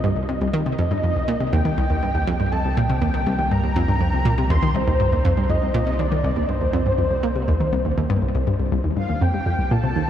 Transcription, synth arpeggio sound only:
0.04 0.10 G2 loud
0.16 0.22 C2 medium
0.29 0.35 C3 medium
0.41 0.47 C2 loud
0.54 0.59 D#3 loud
0.66 0.72 C3 medium
0.78 0.84 F2 medium
0.91 0.94 G2 medium
1.03 1.09 F2 medium
1.16 1.24 C2 medium
1.28 1.32 A#2 loud
1.40 1.49 C3 medium
1.53 1.59 D#2 loud
1.65 1.71 D#3 medium
1.77 1.83 C2 loud
1.90 1.96 D#2 medium
2.03 2.11 G2 medium
2.15 2.21 D#2 medium
2.27 2.33 F2 loud
2.40 2.43 G2 medium
2.52 2.58 F2 medium
2.65 2.73 C2 medium
2.77 2.80 A#2 medium
2.89 2.98 C3 medium
3.02 3.07 D#2 loud
3.14 3.20 D#3 medium
3.26 3.32 C2 loud
3.39 3.45 D#2 medium
3.51 3.60 G2 medium
3.63 3.69 D#2 medium
3.76 3.82 F2 loud
3.88 3.92 G2 medium
4.01 4.06 F2 medium
4.13 4.22 C2 medium
4.25 4.29 A#2 loud
4.38 4.47 C3 medium
4.50 4.56 D#2 loud
4.63 4.68 D#3 medium
4.75 4.81 C2 medium
4.87 4.93 D#2 medium
5.00 5.09 G2 medium
5.12 5.18 D#2 medium
5.25 5.31 F2 loud
5.37 5.41 G2 medium
5.50 5.55 F2 medium
5.62 5.71 C2 medium
5.74 5.78 A#2 loud
5.87 5.96 C3 medium
5.99 6.05 D#2 loud
6.12 6.17 D#3 medium
6.24 6.30 C2 loud
6.36 6.42 D#2 medium
6.49 6.58 G2 medium
6.61 6.67 D#2 medium
6.73 6.79 F2 loud
6.86 6.89 G2 medium
6.98 7.04 F2 medium
7.11 7.20 C2 medium
7.23 7.27 A#2 loud
7.36 7.44 C3 medium
7.48 7.54 D#2 loud
7.60 7.66 D#3 medium
7.73 7.78 C2 loud
7.85 7.91 D#2 medium
7.98 8.01 D#2 loud
8.10 8.19 G2 loud
8.22 8.28 C2 medium
8.35 8.40 C2 loud
8.47 8.56 G2 medium
8.60 8.68 C2 medium
8.72 8.78 C2 loud
8.84 8.90 D#2 medium
8.97 9.05 G2 medium
9.09 9.15 D#2 medium
9.21 9.27 F2 loud
9.34 9.37 G2 medium
9.46 9.52 F2 medium
9.59 9.67 C2 medium
9.71 9.75 A#2 medium
9.83 9.92 C3 medium
9.96 10.02 D#2 loud

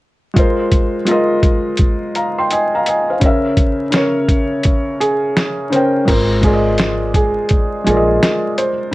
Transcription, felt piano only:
0.34 0.94 G#3 medium
0.34 0.95 F4 medium
0.34 0.96 A#4 medium
0.39 0.97 C5 medium
1.05 2.14 G#3 medium
1.05 2.15 F4 medium
1.05 2.15 A#4 medium
1.11 2.17 D#5 medium
2.16 2.37 F5 soft
2.16 2.37 A#5 medium
2.38 2.51 G5 medium
2.38 2.50 C6 medium
2.51 2.74 D#5 medium
2.51 2.73 G#5 medium
2.75 2.87 F5 soft
2.75 2.86 A#5 medium
2.87 3.09 D#5 medium
2.87 3.09 G#5 medium
3.10 3.44 C5 soft
3.10 3.43 F5 medium
3.20 3.80 C#3 medium
3.20 3.81 C#4 medium
3.20 3.82 A#4 medium
3.26 3.83 E5 medium
3.91 4.99 C#3 medium
3.91 5.00 C#4 medium
3.91 5.01 A#4 medium
3.96 5.02 C#5 medium
5.70 6.00 C#3 medium
5.70 6.01 C#4 medium
5.70 6.02 A#4 medium
5.76 6.03 G5 medium
6.05 6.36 G#3 medium
6.05 6.37 F4 medium
6.05 6.38 A#4 medium
6.11 6.39 C5 medium
6.41 7.50 G#3 medium
6.41 7.51 F4 medium
6.45 7.52 A#4 medium
6.45 6.54 D5 medium
6.54 7.56 D#5 medium
7.84 8.68 G#3 medium
7.84 8.69 F4 medium
7.89 8.70 A#4 medium
7.89 7.97 D5 medium
7.97 8.75 D#5 medium

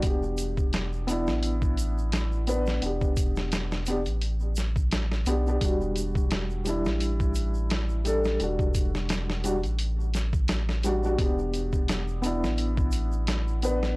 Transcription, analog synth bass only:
0.03 1.29 E1 loud
1.28 2.79 A1 medium
2.83 4.08 E1 loud
4.06 5.26 A1 medium
5.26 5.58 B1 loud
5.61 6.87 E1 medium
6.85 8.37 A1 medium
8.40 9.64 E1 loud
9.63 11.16 A1 medium
11.19 12.45 E1 loud
12.43 13.95 A1 medium

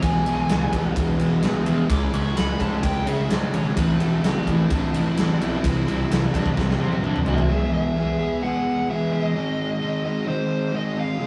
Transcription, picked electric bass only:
0.02 0.18 E1 medium
0.26 0.42 B1 medium
0.49 0.65 C#2 medium
0.73 0.89 E1 medium
0.97 1.12 E1 medium
1.20 1.35 E1 medium
1.43 1.59 E1 medium
1.66 1.82 E2 medium
1.89 2.05 C#2 medium
2.13 2.29 C#2 medium
2.37 2.52 C#2 medium
2.60 2.75 G#2 medium
2.84 2.99 C#2 medium
3.06 3.22 C#3 medium
3.29 3.45 G#2 medium
3.53 3.69 G#1 medium
3.77 3.93 A1 medium
4.00 4.16 E1 medium
4.24 4.39 F#1 medium
4.47 4.63 A1 medium
4.71 4.86 A1 medium
4.94 5.10 A1 loud
5.17 5.33 A1 medium
5.41 5.56 B1 medium
5.64 5.79 C2 medium
5.87 6.02 C2 medium
6.10 6.26 C2 loud
6.34 6.50 G2 medium
6.57 6.73 C2 medium
6.80 6.95 C3 medium
7.03 7.18 G2 loud
7.26 7.42 D2 medium

